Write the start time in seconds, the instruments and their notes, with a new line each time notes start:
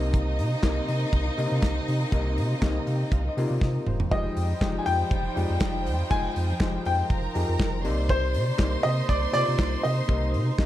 Already playing: sub bass C2, clav C3 A#3 D#4 D#5, string section C3 A#3 C4 D#4, violin section D#4 D#5
0.14 kick, closed hi-hat
0.39 sub bass C3, open hi-hat
0.62 sub bass C2, clav C3 A#3 D#4 D#5, kick, snare, clap, closed hi-hat
0.88 sub bass C3, open hi-hat
1.13 sub bass C2, kick, closed hi-hat
1.37 clav C3 A#3 D#4 D#5, sub bass C3, open hi-hat
1.51 sub bass C3
1.62 sub bass C2, kick, snare, clap, closed hi-hat
1.88 sub bass C3, open hi-hat
2.12 sub bass C2, clav C3 A#3 D#4 A#4, kick, closed hi-hat
2.37 sub bass C3, open hi-hat
2.61 sub bass C2, clav C3 A#3 D#4 C#5, kick, snare, clap, closed hi-hat
2.69 clav D#5
2.87 sub bass C3, clav F5, open hi-hat
2.95 clav G5
3.12 sub bass C2, clav F5, kick, closed hi-hat
3.29 clav D#5
3.37 sub bass C3, clav C3 A#3 D#4 F4, open hi-hat
3.46 sub bass C3, clav D5
3.61 sub bass C3, clav D#5, kick, snare
3.87 sub bass E1, clav C5, mid tom
4.00 floor tom
4.11 sub bass F1, clav F3 G#3 D#4 G4, string section F3 D#4 F4 C5, violin section G3 G5, grand piano D#5, kick, closed hi-hat
4.36 sub bass F2, open hi-hat
4.61 sub bass F1, clav F3 G#3 D#4 G4, kick, snare, clap, closed hi-hat
4.78 grand piano G#5
4.86 sub bass F2, grand piano G5, open hi-hat
5.11 sub bass F1, kick, closed hi-hat
5.36 sub bass F2, clav F3 G#3 D#4 G4, open hi-hat
5.50 sub bass F2
5.60 sub bass F1, kick, snare, clap, closed hi-hat
5.86 sub bass F2, open hi-hat
6.10 sub bass F1, clav F3 G#3 D#4 F4, grand piano G#5, kick, closed hi-hat
6.36 sub bass F2, open hi-hat
6.60 sub bass F1, clav F3 G#3 D#4 G4, kick, snare, clap, closed hi-hat
6.85 sub bass F2, grand piano G5, open hi-hat
7.10 sub bass F1, violin section A#4 A#5, kick, closed hi-hat
7.35 sub bass F2, clav F3 D#4 G4 G#4, open hi-hat
7.49 sub bass F2
7.59 sub bass F1, kick, snare, clap, closed hi-hat
7.84 sub bass C2, clav C3 A#3 D#4 D5, string section C3 A#3 D#4 D5, violin section C5 C6, open hi-hat
8.09 grand piano C5, kick, closed hi-hat
8.34 sub bass C3, open hi-hat
8.58 sub bass C2, clav C3 A#3 D#4 D5, kick, snare, clap, closed hi-hat
8.83 sub bass C3, grand piano D#5, open hi-hat
9.09 sub bass C2, grand piano D5, kick, closed hi-hat
9.33 clav C3 A#3 D#4 F4, sub bass C3, grand piano D5, open hi-hat
9.48 sub bass C3
9.58 sub bass C2, kick, snare, clap, closed hi-hat
9.83 sub bass C3, string section C4, grand piano D#5, open hi-hat
10.08 sub bass C2, clav C3 A#3 D#4 D#5, kick, closed hi-hat
10.34 sub bass C3, open hi-hat
10.59 sub bass C2, clav C3 A#3 D#4 D#5, kick, snare, clap, closed hi-hat